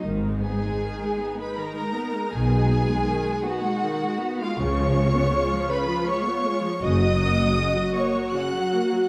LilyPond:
<<
  \new Staff \with { instrumentName = "Violin section" } { \time 3/4 \key gis \dorian \tempo 4 = 80 r8 gis''4~ gis''16 b''16 ais''4 | gis''4. fis''4~ fis''16 eis''16 | cis'''4. b''8 cis'''4 | dis'''4. cis'''8 fis'''4 | }
  \new Staff \with { instrumentName = "Violin section" } { \time 3/4 \key gis \dorian r8 gis'4~ gis'16 b'16 ais'4 | gis'4. fis'4~ fis'16 eis'16 | cis''4. b'8 cis''4 | dis''4. cis''8 fis''4 | }
  \new Staff \with { instrumentName = "Viola section" } { \clef bass \time 3/4 \key gis \dorian << { dis'2.~ | dis'2. | eis'2. | fis'2. | } \\ { dis16 gis16 b16 gis16 dis16 gis16 b16 gis16 dis16 gis16 b16 gis16 | dis16 gis16 b16 gis16 dis16 gis16 b16 gis16 dis16 gis16 b16 gis16 | cis16 eis16 gis16 b16 gis16 eis16 cis16 eis16 gis16 b16 gis16 eis16 | cis16 fis16 ais16 fis16 cis16 fis16 ais16 fis16 cis16 fis16 ais16 fis16 | } >> }
  \new Staff \with { instrumentName = "Cello section" } { \clef bass \time 3/4 \key gis \dorian gis,4 r2 | b,4 r2 | cis4 r2 | fis,4 r2 | }
  \new Staff \with { instrumentName = "Double bass section" } { \clef bass \time 3/4 \key gis \dorian gis,,4 r2 | b,,4 r2 | cis,4 r2 | fis,,4 r2 | }
>>